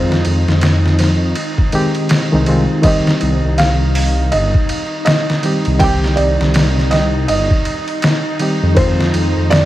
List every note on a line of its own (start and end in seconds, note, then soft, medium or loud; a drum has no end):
0.00 0.22 F2 medium
0.00 1.73 D#3 medium
0.00 1.73 G#3 medium
0.00 1.74 C4 medium
0.00 2.82 D#4 medium
0.00 2.49 F4 medium
0.00 0.58 C5 medium
0.12 snare medium
0.25 0.45 F2 loud
0.25 ride medium
0.48 1.34 F2 loud
0.48 snare medium
0.61 snare loud
0.61 ride medium
0.86 snare soft
0.99 snare medium
0.99 ride medium
1.35 ride medium
1.58 kick loud
1.72 2.27 D#3 medium
1.72 2.27 G#3 medium
1.72 2.27 C4 medium
1.72 2.28 G4 loud
1.72 ride medium
1.95 ride soft
2.09 snare loud
2.09 ride medium
2.32 2.46 C2 medium
2.32 2.43 D#3 medium
2.32 2.44 G#3 medium
2.32 2.44 C4 medium
2.32 2.45 D#4 medium
2.46 2.67 C2 medium
2.46 2.65 D#3 medium
2.46 2.65 G#3 medium
2.46 2.65 C4 medium
2.46 2.66 F4 medium
2.46 ride medium
2.82 5.39 D#3 medium
2.82 5.40 G3 medium
2.82 5.40 C4 medium
2.82 9.65 D#4 medium
2.82 3.60 D#5 medium
2.82 kick loud
2.82 ride medium
2.87 5.41 G4 medium
3.07 snare medium
3.21 3.41 C2 loud
3.21 ride medium
3.44 4.30 C2 medium
3.58 4.34 F5 medium
3.58 snare loud
3.58 ride medium
3.95 open hi-hat medium
4.32 4.52 G1 loud
4.32 5.03 D#5 medium
4.32 ride medium
4.54 kick loud
4.69 ride medium
5.05 5.82 D#5 loud
5.05 snare loud
5.05 ride medium
5.30 snare medium
5.43 5.76 D#3 medium
5.43 5.77 G3 medium
5.43 5.77 C4 medium
5.43 5.78 G4 medium
5.43 ride medium
5.65 6.15 C2 medium
5.65 ride soft
5.79 8.35 D#3 medium
5.79 8.36 G3 medium
5.79 8.37 C4 medium
5.79 6.18 G5 loud
5.79 kick loud
5.79 ride medium
5.84 8.38 G4 medium
6.04 snare soft
6.16 6.37 C2 medium
6.16 6.93 D5 loud
6.16 ride medium
6.41 7.26 C2 medium
6.41 snare medium
6.54 snare loud
6.54 ride medium
6.78 snare soft
6.91 7.26 D#5 medium
6.91 snare medium
6.91 ride medium
7.28 7.48 G1 loud
7.28 8.35 D#5 medium
7.28 ride medium
7.51 kick loud
7.65 ride medium
7.88 ride soft
8.02 snare loud
8.02 ride medium
8.39 8.73 D#3 medium
8.39 8.73 G3 medium
8.39 8.74 C4 medium
8.39 8.74 G4 medium
8.39 ride medium
8.63 9.11 F2 medium
8.75 9.65 D#3 medium
8.75 9.65 G#3 medium
8.75 9.65 C4 medium
8.75 9.53 C5 loud
8.75 kick loud
8.75 ride medium
8.80 9.65 F4 medium
9.01 snare medium
9.14 9.33 F2 loud
9.14 ride medium
9.36 9.65 F2 loud
9.50 9.65 D5 loud
9.50 snare loud
9.50 ride medium